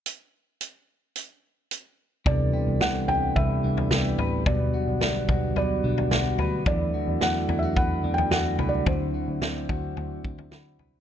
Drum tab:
HH |x---x---x---x---|----------------|----------------|----------------|
SD |----------------|----o-------o---|----o-------o---|----o-------o---|
FT |----------------|o-----o-o--o--o-|o-----o-o--o--o-|o-----o-o--o--o-|
BD |----------------|o-------o-------|o-----o---------|o-------o-------|

HH |----------------|
SD |----o-------o---|
FT |o-----o-o--o--o-|
BD |o-----o---o-----|